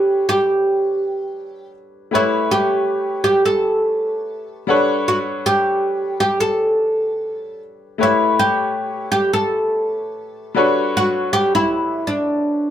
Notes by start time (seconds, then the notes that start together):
Already playing: G3 D4 G4 A4 B4 C#5 F#5
0.29 G4
2.11 A3 E4 G4 B4 C#5
2.51 G4
3.24 G4
3.45 A4
4.67 G3 D4 A4 B4 C#5 F#5
5.08 F#4
5.46 G4
6.20 G4
6.40 A4
7.98 A3 E4 G4 B4 C#5
8.03 E4
8.39 G4
9.12 G4
9.33 A4
10.55 G3 D4 F#4 A4 B4 C#5
10.97 F#4
11.33 G4
11.55 E4
12.07 D4